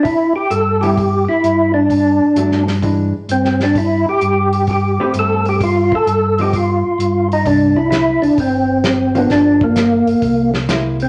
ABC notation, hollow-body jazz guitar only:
X:1
M:4/4
L:1/8
Q:"Swing" 1/4=130
K:C
V:1 name="Hollow-body jazz guitar"
z3 [G,B,E] z4 | z2 [^F,A,D] z [E,^G,D] z3 | z4 z [A,CGB]3 | z3 [F,B,_E] z4 |
z6 z [F,_B,D]- | [F,_B,D]2 z4 [^G,B,E] z |]